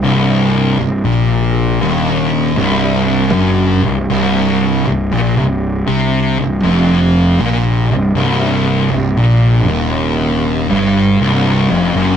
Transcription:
X:1
M:4/4
L:1/16
Q:1/4=59
K:Cm
V:1 name="Tonewheel organ"
[C,DG]16- | [C,DG]16- | [C,DG]16 |]
V:2 name="Distorted electric guitar" clef=bass
C,,3 C,, B,,3 E,,3 C,,3 ^F,,2 C,, | C,,3 C,, B,, C,,2 C,2 C,, F,,3 B,,2 C,, | C,,3 C,, B,,2 E,,4 G,,2 C,,2 F,, ^F,, |]
V:3 name="Distorted electric guitar" clef=bass
C,,3 C,, B,,3 E,,3 C,,3 ^F,,2 C,, | C,,3 C,, B,, C,,2 C,2 C,, F,,3 B,,2 C,, | C,,3 C,, B,,2 E,,4 G,,2 C,,2 F,, ^F,, |]
V:4 name="Fingered electric bass" clef=bass
C,,,3 C,,, B,,,3 E,,,3 C,,,3 ^F,,,2 C,,, | C,,,3 C,,, B,,, C,,,2 C,,2 C,,, F,,,3 B,,,2 C,,, | C,,,3 C,,, B,,,2 E,,,4 G,,,2 C,,,2 F,,, ^F,,, |]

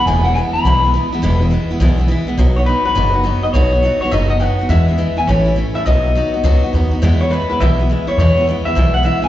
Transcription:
X:1
M:4/4
L:1/8
Q:"Swing" 1/4=207
K:E
V:1 name="Clean electric guitar"
g f g b4- b- | b3 z4 z | z c B B4 d | c3 c d d f2 |
e3 g c2 z e | d6 z2 | z c B B e3 c | c2 z e2 f e g |]
V:2 name="Steel-string acoustic guitar"
[E,,B,,E,G,B,E] [E,G,B,E] [E,G,B,E] [E,G,B,E] [E,,B,,E,G,B,E] [E,G,B,E] [E,G,B,E] [E,G,B,E] | [E,,B,,E,G,B,E] [E,G,B,E] [E,G,B,E] [E,G,B,E] [E,,B,,E,G,B,E] [E,G,B,E] [E,G,B,E] [E,G,B,E] | [B,,F,B,DF] [B,DF] [F,B,DF] [B,DF] [B,,F,B,DF] [B,DF] [F,B,DF] [B,DF] | [B,,F,B,DF] [B,DF] [F,B,DF] [B,DF] [B,,F,B,DF] [B,DF] [F,B,DF] [B,DF] |
[E,,B,,E,G,B,E] [E,G,B,E] [E,G,B,E] [E,G,B,E] [A,,E,A,CE] [A,CE] [E,A,CE] [A,CE] | [B,,F,B,DF] [B,DF] [F,B,DF] [B,DF] [B,,F,B,DF] [B,DF] [F,B,DF] [B,DF] | [E,,B,,E,G,B,E] [E,G,B,E] [E,G,B,E] [E,G,B,E] [E,,B,,E,G,B,E] [E,G,B,E] [E,G,B,E] [E,G,B,E] | [E,,B,,E,G,B,E] [E,G,B,E] [E,G,B,E] [E,G,B,E] [E,,B,,E,G,B,E] [E,G,B,E] [E,G,B,E] [E,G,B,E] |]
V:3 name="Upright bass" clef=bass
E,,,3 z B,,,3 z | E,,,3 z B,,,3 z | B,,,3 z F,,,3 z | B,,,3 z F,,,3 z |
E,,3 z A,,,3 z | B,,,3 z C,, z D,, z | E,,3 z B,,,3 z | E,,3 z B,,,3 z |]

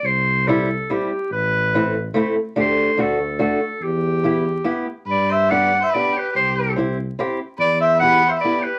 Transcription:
X:1
M:3/4
L:1/16
Q:"Swing" 1/4=144
K:Clyd
V:1 name="Clarinet"
c4 A4 G4 | B8 z4 | c4 A4 A4 | G8- G2 z2 |
d2 e2 f3 e d2 B2 | c4 z8 | d2 e2 f3 e d2 B2 |]
V:2 name="Erhu"
z12 | z12 | z12 | z12 |
B2 c2 d3 c B2 G2 | G4 z8 | B2 c2 B3 c B2 G2 |]
V:3 name="Steel-string acoustic guitar"
z4 [G,CE]2 z2 [G,CE]2 z2 | z4 [A,CE]2 z2 [A,CE]2 z2 | [A,DG]4 [A,DF]2 z2 [A,DF]2 z2 | z4 [B,EG]2 z2 [B,EG]2 z2 |
z4 [B,DG]2 z2 [B,DG]2 z2 | z4 [CEG]2 z2 [CEG]2 z2 | z4 [B,EG]2 z2 [B,EG]2 z2 |]
V:4 name="Tuba" clef=bass
C,,12 | A,,,12 | D,,4 D,,8 | E,,12 |
G,,12 | C,,12 | E,,12 |]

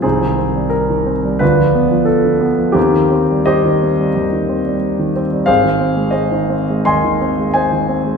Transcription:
X:1
M:4/4
L:1/16
Q:1/4=89
K:Cphr
V:1 name="Grand piano"
[CEA]4 B4 [=DF=B]4 =A4 | [CEG]4 [Gce]8- [Gce]2 z2 | [K:Ab] [Acf]4 [Ace]4 [eac']4 [cea]4 |]
V:2 name="Grand piano" clef=bass
C,, E, C G,2 E, C G, =D,, F, =B, F,2 =D, B, F, | E,, E, C G,2 E, C G, E,, E, C G,2 E, C G, | [K:Ab] A,,, E, C A,2 E, C A, E,, E, C A,2 E, C A, |]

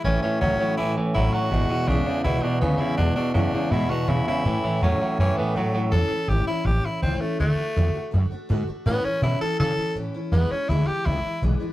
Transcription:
X:1
M:4/4
L:1/16
Q:1/4=163
K:A
V:1 name="Tenor saxophone"
C2 C2 C4 E2 z2 E2 F2- | F4 D4 E2 D2 B,2 E2 | D2 D2 D4 E2 F2 E2 E2- | E4 C4 C2 B,2 A,3 z |
A4 =G2 E2 G2 E2 =C2 A,2 | A,8 z8 | B,2 C2 E2 A2 A4 z4 | B,2 C2 E2 =G2 E4 z4 |]
V:2 name="Steel-string acoustic guitar"
[A,,E,A,CE]2 [A,CE]2 [A,,E,A,CE]2 [A,CE]2 [E,A,CE]2 [A,CE]2 [A,,E,A,CE]2 [A,CE]2 | [E,,B,,E,G,DE]2 [E,G,DE]2 [E,,B,,E,G,DE]2 [E,G,DE]2 [E,G,DE]2 [E,G,DE]2 [E,,B,,E,G,DE]2 [E,G,DE]2 | [E,,B,,E,G,DE]2 [E,G,DE]2 [E,,B,,E,G,DE]2 [E,G,DE]2 [E,G,DE]2 [E,G,DE]2 [E,,B,,E,G,DE]2 [E,G,DE]2 | [A,,E,A,CE]2 [A,CE]2 [A,,E,A,CE]2 [A,CE]2 [E,A,CE]2 [A,CE]2 [A,,E,A,CE]2 [A,CE]2 |
[A,,E,A,CE]2 [A,CE]2 [A,,E,A,CE]2 [A,CE]2 [E,A,CE]2 [A,CE]2 [A,,E,A,CE]2 [A,CE]2 | [D,A,DF]2 [A,DF]2 [D,A,DF]2 [A,DF]2 [D,A,DF]2 [A,DF]2 [D,A,DF]2 [A,DF]2 | [A,,E,A,CE]2 [A,CE]2 [A,,E,A,CE]2 [A,CE]2 [E,A,CE]2 [A,CE]2 [A,,E,A,CE]2 [A,CE]2 | [E,,B,,E,G,DE]2 [E,G,DE]2 [E,,B,,E,G,DE]2 [E,G,DE]2 [E,G,DE]2 [E,G,DE]2 [E,,B,,E,G,DE]2 [E,G,DE]2 |]
V:3 name="Clean electric guitar" clef=bass
[A,,E,]2 [A,,E,]2 [A,,F,]2 [A,,F,]2 [A,,E,]2 [A,,E,]2 [A,,F,]2 [A,,F,]2 | [E,,B,,]2 [E,,B,,]2 [E,,C,]2 [E,,C,]2 [E,,B,,]2 [E,,B,,]2 [E,,C,]2 [E,,C,]2 | [E,,B,,]2 [E,,B,,]2 [E,,C,]2 [E,,C,]2 [E,,B,,]2 [E,,B,,]2 [E,,C,]2 [E,,C,]2 | [A,,E,]2 [A,,E,]2 [A,,F,]2 [A,,F,]2 [A,,E,]2 [A,,E,]2 [A,,F,]2 [A,,F,]2 |
z16 | z16 | z16 | z16 |]
V:4 name="Upright bass" clef=bass
A,,,2 z2 C,,2 z2 B,,,2 z2 A,,,2 z2 | G,,,2 z2 B,,,2 z2 C,,2 z2 D,,2 z2 | E,,2 z2 F,,2 z2 G,,2 z2 B,,2 z2 | A,,2 z2 E,,2 z2 F,,2 z2 G,,2 z2 |
E,,2 z2 G,,,2 z2 A,,,2 z2 C,,2 z2 | D,,2 z2 E,,2 z2 F,,2 z2 G,,2 z2 | A,,2 z2 B,,2 z2 C,2 z2 A,,2 z2 | E,,2 z2 D,,2 z2 C,,2 z2 B,,,2 z2 |]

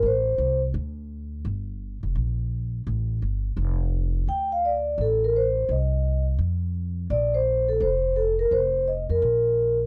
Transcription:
X:1
M:4/4
L:1/8
Q:"Swing" 1/4=170
K:Fmix
V:1 name="Vibraphone"
c3 z4 z | z8 | z8 | g f d2 A B c2 |
e3 z4 z | d c2 A c2 A B | c2 e B4 z |]
V:2 name="Upright bass" clef=bass
A,,,2 C,,2 D,,4 | G,,,3 F,,, B,,,4 | A,,,2 G,,,2 F,,,4 | D,,4 A,,,4 |
C,,4 F,,4 | B,,,4 F,,,4 | F,,,3 F,, B,,,4 |]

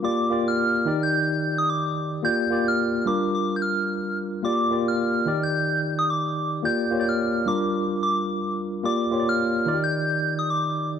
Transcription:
X:1
M:4/4
L:1/16
Q:"Swing 16ths" 1/4=109
K:Bb
V:1 name="Soft synth lead"
d'3 f'4 g'4 e' d'3 z | g'3 f'2- f'/2 f'/2 d'2 d'3/2 g'/2 f'4 z2 | d'3 f'4 g'4 e' d'3 z | g'2- g'/2 g'/2 f'3 d'4 d'4 z2 |
d'3 f'4 g'4 e' d'3 z |]
V:2 name="Tine electric piano"
[B,FGd]2 [B,FGd]2 z2 [E,EGd]6 z4 | [B,FGd]2 [B,FGd]2 z2 [G,DFB]6 z4 | [B,FGd]2 [B,FGd]2 z2 [E,EGd]6 z4 | [B,FGd]2 [B,FG_d=d]2 z2 [G,DFB]6 z4 |
[B,FGd]2 [B,FG_d=d]2 z2 [E,EFGd]6 z4 |]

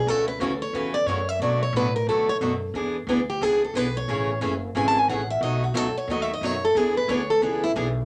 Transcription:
X:1
M:4/4
L:1/16
Q:"Swing" 1/4=179
K:Bdor
V:1 name="Steel-string acoustic guitar"
A2 B2 A2 c2 B2 d2 c2 e2 | d2 c2 B2 _B2 A2 c2 z4 | z6 =G2 ^G2 A2 B2 c2- | c4 z4 (3g2 a2 g2 f2 e2 |
^d2 F2 A2 c2 (3d2 e2 d2 c2 A2 | G2 B2 c2 A2 z2 E2 z4 |]
V:2 name="Steel-string acoustic guitar"
[C,E,A,CF]2 z2 [C,E,A,CF] z3 [C,E,A,CF]2 z2 [C,E,A,CF] z3 | [B,,F,A,DF]2 z2 [B,,F,A,DF] z3 [B,,F,A,DF]2 z2 [B,,F,A,DF] z3 | [E,B,DG]2 z2 [E,B,DG] z3 [E,B,DG]2 z2 [E,B,DG] z3 | [C,E,A,CG]2 z2 [C,E,A,CG] z3 [C,E,A,CG]2 z2 [C,E,A,CG] z3 |
[B,,F,A,^DF]2 z2 [B,,F,A,DF] z3 [B,,F,A,DF]2 z2 [B,,F,A,DF] z3 | [E,B,DG]2 z2 [E,B,DG] z3 [E,B,DG]2 z2 [E,B,DG] z3 |]
V:3 name="Upright bass" clef=bass
C,,4 D,,4 E,,4 F,,4 | B,,4 A,,4 D,,4 F,,4 | E,,4 D,,4 C,,4 B,,,4 | A,,,4 F,,,4 G,,,4 A,,,4 |
B,,,4 C,,2 z2 ^D,,4 F,,4 | E,,4 D,,4 C,,4 B,,,4 |]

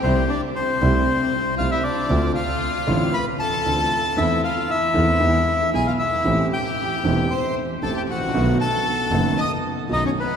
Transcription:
X:1
M:4/4
L:1/16
Q:1/4=116
K:Am
V:1 name="Bandoneon"
c2 d2 c8 f e d2- | d2 f6 b2 a6 | e2 f2 e8 ^g f e2- | e2 g6 c'2 z2 a g ^f2- |
^f2 a6 ^d'2 z2 ^d ^c B2 |]
V:2 name="Violin section"
C2 D2 C8 F E D2- | D2 F6 B2 A6 | E2 F2 E8 ^G F E2- | E2 G6 c2 z2 A G ^F2- |
^F2 A6 ^d2 z2 ^D ^C B,2 |]
V:3 name="Grand piano" clef=bass
[C,,C,G,A,E]2 z4 [C,,C,G,A,E]2 z4 [C,,C,G,A,E]2 z2 | [D,,D,A,CF]2 z4 [A,,,A,,D,A,CF]2 z4 [D,,D,A,CF]2 z2 | [E,,E,A,CA]2 z4 [E,,E,A,CA]2 [E,,E,^G,B,^G]2 z2 [B,,,B,,E,G,B,G]2 z2 | [A,,,A,,E,A,CG]2 z4 [E,,,E,,E,A,CG]2 z4 [A,,,A,,E,A,CG]2 z/2 ^G,,,/2 A,,,/2 _B,,,/2 |
[B,,,B,,^D,A,B,^F]2 z4 [^F,,,^F,,D,A,B,F]2 z4 [B,,,B,,D,A,B,F]2 z2 |]
V:4 name="Double bass" clef=bass
C,,2 z4 C,,2 z4 C,,2 z2 | D,,2 z4 A,,,2 z4 D,,2 z2 | E,,2 z4 E,,2 E,,2 z2 B,,,2 z2 | A,,,2 z4 E,,,2 z4 A,,,2 A,,,2 |
B,,,2 z4 ^F,,,2 z4 B,,,2 z2 |]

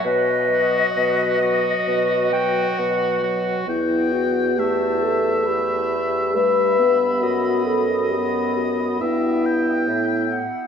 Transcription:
X:1
M:4/4
L:1/8
Q:1/4=67
K:Em
V:1 name="Flute"
^d6 z2 | g2 a2 b2 b2- | b2 b2 g2 e f |]
V:2 name="Oboe"
z F2 F2 F2 F | g2 e4 e2 | ^d4 e g2 z |]
V:3 name="French horn"
z F,2 F,2 F,2 F, | E F G A G2 B2 | F A G F E3 z |]
V:4 name="Clarinet"
B2 B ^d2 g f2 | B,2 A,4 G, B,- | B,2 B,2 B,3 z |]
V:5 name="Bassoon" clef=bass
B,,2 B,,2 B,,2 B,,2 | E,,6 G,,2 | F,,4 G,,2 A,, z |]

